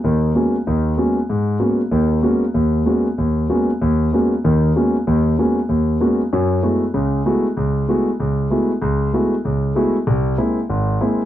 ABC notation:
X:1
M:4/4
L:1/8
Q:"Swing" 1/4=191
K:Ablyd
V:1 name="Grand piano"
[E,,E,]2 [A,B,_C_D_G] z [E,,E,]2 [A,B,CDG] z | [K:F#dor] _A,,2 [_A,_B,_C_D_G] z [_E,,_E,]2 [A,B,CDG] z | _E,,2 [_A,_B,_C_D_G] z E,,2 [A,B,CDG] z | _E,,2 [_A,_B,_C_D_G] z [E,,_E,]2 [A,B,CDG] z |
[_E,,_E,]2 [_A,_B,_C_D_G] z E,,2 [A,B,CDG] z | [F,,F,]2 [G,A,B,EF] z [C,,C,]2 [G,A,B,EF] z | C,,2 [G,A,B,EF] z C,,2 [G,A,B,EF] z | C,,2 [G,A,B,EF] z C,,2 [G,A,B,EF] z |
=C,,2 [G,_B,=CE] z G,,,2 [G,B,CE] z |]